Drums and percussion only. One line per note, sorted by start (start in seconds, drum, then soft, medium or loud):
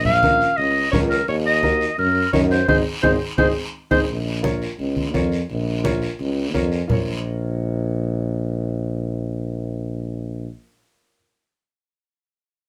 0.05 low conga medium
0.23 high conga medium
0.23 short guiro medium
0.40 short guiro medium
0.58 high conga soft
0.58 long guiro medium
0.93 high conga medium
0.93 low conga medium
0.93 short guiro medium
1.11 short guiro medium
1.28 high conga soft
1.28 long guiro medium
1.63 high conga medium
1.63 short guiro medium
1.81 short guiro medium
1.98 high conga soft
1.98 long guiro medium
2.33 high conga medium
2.33 short guiro medium
2.51 short guiro medium
2.68 high conga loud
2.68 long guiro medium
3.03 high conga medium
3.03 long guiro medium
3.38 high conga loud
3.38 long guiro medium
3.91 high conga loud
3.91 long guiro loud
4.09 high conga soft
4.09 long guiro medium
4.44 high conga medium
4.44 short guiro medium
4.62 short guiro medium
4.79 high conga soft
4.79 long guiro medium
4.97 high conga medium
5.14 high conga medium
5.14 short guiro medium
5.32 short guiro medium
5.49 high conga soft
5.49 long guiro medium
5.85 high conga medium
5.85 short guiro medium
6.02 short guiro medium
6.19 high conga soft
6.19 long guiro medium
6.54 high conga medium
6.54 short guiro medium
6.72 short guiro medium
6.89 low conga medium
6.89 long guiro medium